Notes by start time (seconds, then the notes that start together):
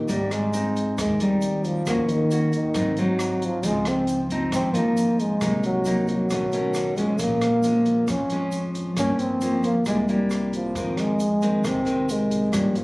Already playing: D#3
0.08 G#1 G#2 G3 C4 D#4, kick, closed hi-hat, shaker
0.31 G#3, cross-stick, closed hi-hat, shaker
0.53 C4 D#4, closed hi-hat, shaker
0.76 kick, closed hi-hat, shaker
0.98 D#2 D#3 G#3, kick, cross-stick, closed hi-hat, shaker
1.20 G3 C4 D#4, closed hi-hat, shaker
1.41 closed hi-hat, shaker
1.64 F3, kick, closed hi-hat, shaker
1.86 D#2 D#3 A#3 C#4 F#4, kick, cross-stick, closed hi-hat, shaker
2.09 D#3, closed hi-hat, shaker
2.31 A#3 C#4 F#4, closed hi-hat, shaker
2.52 D#3, kick, closed hi-hat, shaker
2.74 G#1 G#2 F#3 C4 D#4, kick, cross-stick, closed hi-hat, shaker
2.97 F#3 C4 D#4, closed hi-hat, shaker
3.19 cross-stick, closed hi-hat, shaker
3.42 F3, kick, closed hi-hat, shaker
3.63 C#2 C#3 F3 G#3 C4 D#4, kick, closed hi-hat, shaker
3.85 C4, cross-stick, closed hi-hat, shaker
4.07 closed hi-hat, shaker
4.30 F3 C4 D#4, kick, closed hi-hat, shaker
4.52 G#1 G#2 C4, kick, cross-stick, closed hi-hat, shaker
4.74 F3 A#3 C4 D#4, closed hi-hat, shaker
4.97 closed hi-hat, shaker
5.19 G#3, kick, closed hi-hat, shaker
5.41 C2 C3 F#3 A#3 D#4, kick, cross-stick, closed hi-hat, shaker
5.63 F#3, closed hi-hat, shaker
5.85 F#3 A#3 D#4, closed hi-hat, shaker
6.07 F#3, kick, closed hi-hat, shaker
6.30 B1 B2 D#3 A3 C#4, kick, cross-stick, closed hi-hat, shaker
6.52 D#3 A3 C#4, closed hi-hat, shaker
6.74 cross-stick, closed hi-hat, shaker
6.97 F3 G#3 C#4, kick, closed hi-hat, shaker
7.19 A#1 A#2 A#3, kick, closed hi-hat, shaker
7.41 cross-stick, closed hi-hat, shaker
7.63 F3 G#3 C#4, closed hi-hat, shaker
7.86 kick, closed hi-hat, shaker
8.08 F2 C#4, kick, cross-stick, closed hi-hat, shaker
8.30 F3 G#3 C#4, closed hi-hat, shaker
8.52 closed hi-hat, shaker
8.75 kick, closed hi-hat, shaker
8.96 G1 G2 F3 A#3 C#4, kick, cross-stick, closed hi-hat, shaker
9.19 C4, closed hi-hat, shaker
9.41 F3 A#3 C#4, closed hi-hat, shaker
9.63 A#3, kick, closed hi-hat, shaker
9.85 C2 C3 G3 G#3 A#3 E4, kick, cross-stick, closed hi-hat, shaker
10.08 G3 A#3 E4, closed hi-hat, shaker
10.30 cross-stick, closed hi-hat, shaker
10.53 F3, kick, closed hi-hat, shaker
10.75 F2 D#3 G#3 C4, kick, closed hi-hat, shaker
10.97 G#3, cross-stick, closed hi-hat, shaker
11.19 closed hi-hat, shaker
11.42 D#3 G#3 C4, kick, closed hi-hat, shaker
11.64 C2 C3 C4, kick, cross-stick, closed hi-hat, shaker
11.85 D#3 G#3 C4, closed hi-hat, shaker
12.09 G#3, closed hi-hat, shaker
12.31 kick, closed hi-hat, shaker
12.52 G2 F3 G3 A#3 C#4, kick, cross-stick, closed hi-hat, shaker
12.75 F3, closed hi-hat, shaker